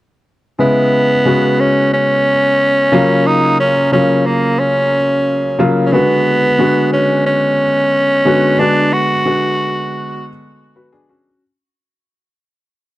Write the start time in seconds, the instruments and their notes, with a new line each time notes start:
0.59 grand piano C#3 G#3 B3 E4, tenor saxophone B3
1.25 grand piano C#3 G#3 B3 F#4
1.60 tenor saxophone C#4
1.93 tenor saxophone C#4
2.92 grand piano C#3 F#3 A#3 F4
3.26 tenor saxophone D#4
3.60 tenor saxophone C#4
3.92 grand piano C#3 F#3 A#3 F4, tenor saxophone C#4
4.26 tenor saxophone A#3
4.59 tenor saxophone C#4
5.59 grand piano C#3 F#3 A#3 F4
5.86 tenor saxophone C#4
5.92 grand piano D3 G#3 B3 F#4, tenor saxophone B3
6.59 grand piano D3 G#3 B3 F#4
6.93 tenor saxophone C#4
7.26 tenor saxophone C#4
8.25 grand piano D3 G#3 B3 F#4
8.59 grand piano D3 G#3 B3 F#4, tenor saxophone D4
8.93 tenor saxophone F#4
9.25 grand piano D3 G#3 B3 F#4
10.76 grand piano F#4 B4
10.93 grand piano D4 G#4
11.09 grand piano C#4 F#4